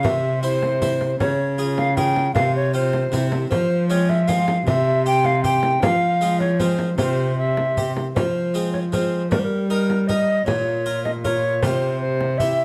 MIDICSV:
0, 0, Header, 1, 5, 480
1, 0, Start_track
1, 0, Tempo, 385852
1, 56, Time_signature, 3, 2, 24, 8
1, 15733, End_track
2, 0, Start_track
2, 0, Title_t, "Recorder"
2, 0, Program_c, 0, 74
2, 70, Note_on_c, 0, 76, 85
2, 524, Note_off_c, 0, 76, 0
2, 532, Note_on_c, 0, 72, 101
2, 1476, Note_off_c, 0, 72, 0
2, 1496, Note_on_c, 0, 73, 89
2, 2199, Note_off_c, 0, 73, 0
2, 2213, Note_on_c, 0, 77, 92
2, 2448, Note_off_c, 0, 77, 0
2, 2453, Note_on_c, 0, 79, 101
2, 2913, Note_off_c, 0, 79, 0
2, 2921, Note_on_c, 0, 77, 95
2, 3161, Note_off_c, 0, 77, 0
2, 3180, Note_on_c, 0, 73, 91
2, 3411, Note_off_c, 0, 73, 0
2, 3421, Note_on_c, 0, 72, 99
2, 4070, Note_off_c, 0, 72, 0
2, 4356, Note_on_c, 0, 72, 92
2, 4830, Note_off_c, 0, 72, 0
2, 4841, Note_on_c, 0, 73, 95
2, 5091, Note_on_c, 0, 76, 88
2, 5110, Note_off_c, 0, 73, 0
2, 5324, Note_on_c, 0, 77, 90
2, 5343, Note_off_c, 0, 76, 0
2, 5803, Note_off_c, 0, 77, 0
2, 5821, Note_on_c, 0, 76, 102
2, 6281, Note_off_c, 0, 76, 0
2, 6303, Note_on_c, 0, 79, 116
2, 6539, Note_on_c, 0, 77, 105
2, 6558, Note_off_c, 0, 79, 0
2, 6758, Note_off_c, 0, 77, 0
2, 6765, Note_on_c, 0, 79, 106
2, 7261, Note_on_c, 0, 77, 95
2, 7280, Note_off_c, 0, 79, 0
2, 7958, Note_off_c, 0, 77, 0
2, 7965, Note_on_c, 0, 73, 83
2, 8206, Note_on_c, 0, 72, 81
2, 8224, Note_off_c, 0, 73, 0
2, 8681, Note_off_c, 0, 72, 0
2, 8688, Note_on_c, 0, 72, 92
2, 9165, Note_off_c, 0, 72, 0
2, 9179, Note_on_c, 0, 76, 95
2, 9855, Note_off_c, 0, 76, 0
2, 10141, Note_on_c, 0, 72, 72
2, 10819, Note_off_c, 0, 72, 0
2, 10860, Note_on_c, 0, 73, 64
2, 10934, Note_off_c, 0, 73, 0
2, 11116, Note_on_c, 0, 72, 75
2, 11573, Note_off_c, 0, 72, 0
2, 11581, Note_on_c, 0, 70, 70
2, 11684, Note_on_c, 0, 72, 60
2, 11702, Note_off_c, 0, 70, 0
2, 11749, Note_on_c, 0, 70, 75
2, 11768, Note_off_c, 0, 72, 0
2, 12053, Note_off_c, 0, 70, 0
2, 12061, Note_on_c, 0, 70, 71
2, 12533, Note_on_c, 0, 75, 83
2, 12552, Note_off_c, 0, 70, 0
2, 13004, Note_off_c, 0, 75, 0
2, 13012, Note_on_c, 0, 73, 75
2, 13724, Note_off_c, 0, 73, 0
2, 13743, Note_on_c, 0, 75, 78
2, 13818, Note_off_c, 0, 75, 0
2, 13989, Note_on_c, 0, 73, 88
2, 14464, Note_on_c, 0, 72, 85
2, 14482, Note_off_c, 0, 73, 0
2, 14934, Note_off_c, 0, 72, 0
2, 14941, Note_on_c, 0, 72, 86
2, 15402, Note_on_c, 0, 76, 89
2, 15421, Note_off_c, 0, 72, 0
2, 15733, Note_off_c, 0, 76, 0
2, 15733, End_track
3, 0, Start_track
3, 0, Title_t, "Harpsichord"
3, 0, Program_c, 1, 6
3, 41, Note_on_c, 1, 48, 56
3, 535, Note_on_c, 1, 64, 52
3, 543, Note_on_c, 1, 72, 50
3, 881, Note_off_c, 1, 64, 0
3, 886, Note_off_c, 1, 72, 0
3, 1019, Note_on_c, 1, 64, 53
3, 1024, Note_on_c, 1, 72, 57
3, 1364, Note_off_c, 1, 64, 0
3, 1368, Note_off_c, 1, 72, 0
3, 1440, Note_off_c, 1, 48, 0
3, 1499, Note_on_c, 1, 49, 54
3, 1969, Note_on_c, 1, 65, 53
3, 1977, Note_on_c, 1, 68, 55
3, 2316, Note_off_c, 1, 65, 0
3, 2321, Note_off_c, 1, 68, 0
3, 2452, Note_on_c, 1, 65, 49
3, 2456, Note_on_c, 1, 68, 55
3, 2797, Note_off_c, 1, 65, 0
3, 2800, Note_off_c, 1, 68, 0
3, 2884, Note_off_c, 1, 49, 0
3, 2922, Note_on_c, 1, 48, 53
3, 3404, Note_on_c, 1, 60, 56
3, 3413, Note_on_c, 1, 65, 60
3, 3751, Note_off_c, 1, 60, 0
3, 3757, Note_off_c, 1, 65, 0
3, 3834, Note_off_c, 1, 48, 0
3, 3881, Note_on_c, 1, 48, 57
3, 3889, Note_on_c, 1, 60, 53
3, 3898, Note_on_c, 1, 64, 55
3, 4315, Note_off_c, 1, 48, 0
3, 4320, Note_off_c, 1, 60, 0
3, 4324, Note_off_c, 1, 64, 0
3, 4365, Note_on_c, 1, 53, 55
3, 4848, Note_on_c, 1, 56, 55
3, 4851, Note_on_c, 1, 60, 59
3, 4855, Note_on_c, 1, 65, 62
3, 5191, Note_off_c, 1, 56, 0
3, 5194, Note_off_c, 1, 60, 0
3, 5196, Note_off_c, 1, 65, 0
3, 5321, Note_on_c, 1, 56, 51
3, 5322, Note_on_c, 1, 60, 54
3, 5330, Note_on_c, 1, 65, 64
3, 5667, Note_off_c, 1, 56, 0
3, 5667, Note_off_c, 1, 60, 0
3, 5673, Note_off_c, 1, 65, 0
3, 5752, Note_off_c, 1, 53, 0
3, 5808, Note_on_c, 1, 48, 54
3, 6294, Note_on_c, 1, 60, 60
3, 6298, Note_on_c, 1, 67, 64
3, 6634, Note_off_c, 1, 60, 0
3, 6636, Note_off_c, 1, 67, 0
3, 6770, Note_on_c, 1, 60, 62
3, 6774, Note_on_c, 1, 67, 63
3, 7113, Note_off_c, 1, 60, 0
3, 7115, Note_off_c, 1, 67, 0
3, 7193, Note_off_c, 1, 48, 0
3, 7248, Note_on_c, 1, 53, 60
3, 7727, Note_on_c, 1, 56, 56
3, 7733, Note_on_c, 1, 60, 54
3, 7740, Note_on_c, 1, 65, 63
3, 8072, Note_off_c, 1, 56, 0
3, 8075, Note_off_c, 1, 60, 0
3, 8080, Note_off_c, 1, 65, 0
3, 8208, Note_on_c, 1, 56, 54
3, 8215, Note_on_c, 1, 60, 55
3, 8216, Note_on_c, 1, 65, 64
3, 8553, Note_off_c, 1, 56, 0
3, 8558, Note_off_c, 1, 60, 0
3, 8559, Note_off_c, 1, 65, 0
3, 8639, Note_off_c, 1, 53, 0
3, 8683, Note_on_c, 1, 48, 56
3, 8693, Note_on_c, 1, 60, 47
3, 8699, Note_on_c, 1, 65, 45
3, 9128, Note_off_c, 1, 60, 0
3, 9132, Note_off_c, 1, 65, 0
3, 9671, Note_on_c, 1, 60, 51
3, 9675, Note_on_c, 1, 67, 51
3, 9857, Note_off_c, 1, 48, 0
3, 10020, Note_off_c, 1, 60, 0
3, 10022, Note_off_c, 1, 67, 0
3, 10155, Note_on_c, 1, 53, 45
3, 10627, Note_on_c, 1, 56, 43
3, 10634, Note_on_c, 1, 60, 43
3, 10637, Note_on_c, 1, 65, 46
3, 10976, Note_off_c, 1, 56, 0
3, 10980, Note_off_c, 1, 60, 0
3, 10982, Note_off_c, 1, 65, 0
3, 11102, Note_on_c, 1, 56, 44
3, 11111, Note_on_c, 1, 60, 43
3, 11117, Note_on_c, 1, 65, 50
3, 11451, Note_off_c, 1, 56, 0
3, 11457, Note_off_c, 1, 60, 0
3, 11461, Note_off_c, 1, 65, 0
3, 11545, Note_off_c, 1, 53, 0
3, 11585, Note_on_c, 1, 55, 39
3, 12069, Note_on_c, 1, 63, 46
3, 12073, Note_on_c, 1, 70, 44
3, 12415, Note_off_c, 1, 63, 0
3, 12417, Note_off_c, 1, 70, 0
3, 12549, Note_on_c, 1, 63, 45
3, 12558, Note_on_c, 1, 70, 49
3, 12895, Note_off_c, 1, 63, 0
3, 12901, Note_off_c, 1, 70, 0
3, 12976, Note_off_c, 1, 55, 0
3, 13018, Note_on_c, 1, 46, 47
3, 13508, Note_on_c, 1, 65, 46
3, 13511, Note_on_c, 1, 70, 52
3, 13852, Note_off_c, 1, 65, 0
3, 13854, Note_off_c, 1, 70, 0
3, 13990, Note_on_c, 1, 65, 47
3, 13995, Note_on_c, 1, 70, 52
3, 14333, Note_off_c, 1, 65, 0
3, 14335, Note_off_c, 1, 70, 0
3, 14408, Note_off_c, 1, 46, 0
3, 14464, Note_on_c, 1, 48, 48
3, 14472, Note_on_c, 1, 65, 45
3, 14482, Note_on_c, 1, 67, 42
3, 14899, Note_off_c, 1, 65, 0
3, 14904, Note_off_c, 1, 67, 0
3, 15428, Note_on_c, 1, 64, 51
3, 15431, Note_on_c, 1, 67, 51
3, 15733, Note_off_c, 1, 48, 0
3, 15733, Note_off_c, 1, 64, 0
3, 15733, Note_off_c, 1, 67, 0
3, 15733, End_track
4, 0, Start_track
4, 0, Title_t, "Cello"
4, 0, Program_c, 2, 42
4, 59, Note_on_c, 2, 48, 77
4, 1491, Note_off_c, 2, 48, 0
4, 1498, Note_on_c, 2, 49, 74
4, 2904, Note_off_c, 2, 49, 0
4, 2931, Note_on_c, 2, 48, 74
4, 3870, Note_off_c, 2, 48, 0
4, 3883, Note_on_c, 2, 48, 67
4, 4355, Note_off_c, 2, 48, 0
4, 4363, Note_on_c, 2, 53, 85
4, 5751, Note_off_c, 2, 53, 0
4, 5794, Note_on_c, 2, 48, 86
4, 7240, Note_on_c, 2, 53, 76
4, 7258, Note_off_c, 2, 48, 0
4, 8682, Note_off_c, 2, 53, 0
4, 8689, Note_on_c, 2, 48, 75
4, 9885, Note_off_c, 2, 48, 0
4, 10151, Note_on_c, 2, 53, 64
4, 11595, Note_on_c, 2, 55, 64
4, 11614, Note_off_c, 2, 53, 0
4, 13022, Note_off_c, 2, 55, 0
4, 13030, Note_on_c, 2, 46, 69
4, 14465, Note_on_c, 2, 48, 73
4, 14484, Note_off_c, 2, 46, 0
4, 15733, Note_off_c, 2, 48, 0
4, 15733, End_track
5, 0, Start_track
5, 0, Title_t, "Frame drum"
5, 56, Note_on_c, 9, 64, 72
5, 181, Note_off_c, 9, 64, 0
5, 778, Note_on_c, 9, 64, 47
5, 903, Note_off_c, 9, 64, 0
5, 1017, Note_on_c, 9, 64, 50
5, 1141, Note_off_c, 9, 64, 0
5, 1256, Note_on_c, 9, 64, 49
5, 1380, Note_off_c, 9, 64, 0
5, 1498, Note_on_c, 9, 64, 72
5, 1622, Note_off_c, 9, 64, 0
5, 2213, Note_on_c, 9, 64, 50
5, 2337, Note_off_c, 9, 64, 0
5, 2453, Note_on_c, 9, 64, 54
5, 2578, Note_off_c, 9, 64, 0
5, 2691, Note_on_c, 9, 64, 48
5, 2815, Note_off_c, 9, 64, 0
5, 2929, Note_on_c, 9, 64, 76
5, 3054, Note_off_c, 9, 64, 0
5, 3649, Note_on_c, 9, 64, 48
5, 3773, Note_off_c, 9, 64, 0
5, 3896, Note_on_c, 9, 64, 49
5, 4021, Note_off_c, 9, 64, 0
5, 4130, Note_on_c, 9, 64, 54
5, 4254, Note_off_c, 9, 64, 0
5, 4376, Note_on_c, 9, 64, 70
5, 4501, Note_off_c, 9, 64, 0
5, 5092, Note_on_c, 9, 64, 48
5, 5217, Note_off_c, 9, 64, 0
5, 5335, Note_on_c, 9, 64, 53
5, 5459, Note_off_c, 9, 64, 0
5, 5572, Note_on_c, 9, 64, 56
5, 5696, Note_off_c, 9, 64, 0
5, 5814, Note_on_c, 9, 64, 74
5, 5939, Note_off_c, 9, 64, 0
5, 6524, Note_on_c, 9, 64, 47
5, 6648, Note_off_c, 9, 64, 0
5, 6766, Note_on_c, 9, 64, 50
5, 6891, Note_off_c, 9, 64, 0
5, 7001, Note_on_c, 9, 64, 50
5, 7126, Note_off_c, 9, 64, 0
5, 7251, Note_on_c, 9, 64, 80
5, 7375, Note_off_c, 9, 64, 0
5, 7967, Note_on_c, 9, 64, 49
5, 8091, Note_off_c, 9, 64, 0
5, 8206, Note_on_c, 9, 64, 50
5, 8331, Note_off_c, 9, 64, 0
5, 8445, Note_on_c, 9, 64, 50
5, 8569, Note_off_c, 9, 64, 0
5, 8686, Note_on_c, 9, 64, 66
5, 8811, Note_off_c, 9, 64, 0
5, 9421, Note_on_c, 9, 64, 48
5, 9545, Note_off_c, 9, 64, 0
5, 9670, Note_on_c, 9, 64, 51
5, 9794, Note_off_c, 9, 64, 0
5, 9910, Note_on_c, 9, 64, 47
5, 10034, Note_off_c, 9, 64, 0
5, 10156, Note_on_c, 9, 64, 71
5, 10281, Note_off_c, 9, 64, 0
5, 10873, Note_on_c, 9, 64, 40
5, 10998, Note_off_c, 9, 64, 0
5, 11111, Note_on_c, 9, 64, 46
5, 11236, Note_off_c, 9, 64, 0
5, 11592, Note_on_c, 9, 64, 73
5, 11716, Note_off_c, 9, 64, 0
5, 12313, Note_on_c, 9, 64, 46
5, 12437, Note_off_c, 9, 64, 0
5, 12556, Note_on_c, 9, 64, 48
5, 12680, Note_off_c, 9, 64, 0
5, 13034, Note_on_c, 9, 64, 67
5, 13158, Note_off_c, 9, 64, 0
5, 13751, Note_on_c, 9, 64, 43
5, 13875, Note_off_c, 9, 64, 0
5, 13991, Note_on_c, 9, 64, 48
5, 14116, Note_off_c, 9, 64, 0
5, 14463, Note_on_c, 9, 64, 69
5, 14587, Note_off_c, 9, 64, 0
5, 15184, Note_on_c, 9, 64, 46
5, 15309, Note_off_c, 9, 64, 0
5, 15422, Note_on_c, 9, 64, 48
5, 15546, Note_off_c, 9, 64, 0
5, 15733, End_track
0, 0, End_of_file